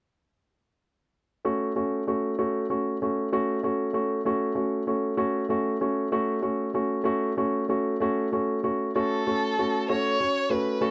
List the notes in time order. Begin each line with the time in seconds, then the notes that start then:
1.45 A3 C#4 F#4
1.76 A3 C#4 F#4
2.07 A3 C#4 F#4
2.38 A3 C#4 F#4
2.70 A3 C#4 F#4
3.02 A3 C#4 F#4
3.32 A3 C#4 F#4
3.63 A3 C#4 F#4
3.93 A3 C#4 F#4
4.25 A3 C#4 F#4
4.55 A3 C#4 F#4
4.87 A3 C#4 F#4
5.17 A3 C#4 F#4
5.49 A3 C#4 F#4
5.81 A3 C#4 F#4
6.12 A3 C#4 F#4
6.42 A3 C#4 F#4
6.74 A3 C#4 F#4
7.04 A3 C#4 F#4
7.37 A3 C#4 F#4
7.69 A3 C#4 F#4
8.00 A3 C#4 F#4
8.32 A3 C#4 F#4
8.63 A3 C#4 F#4
8.95 A3 C#4 F#4 A4
9.27 A3 C#4 F#4
9.58 A3 C#4 F#4
9.89 A3 C#4 F#4 C#5
10.20 C#4 F#4
10.50 A3 C#4 F#4 B4
10.81 A3 C#4 F#4 A4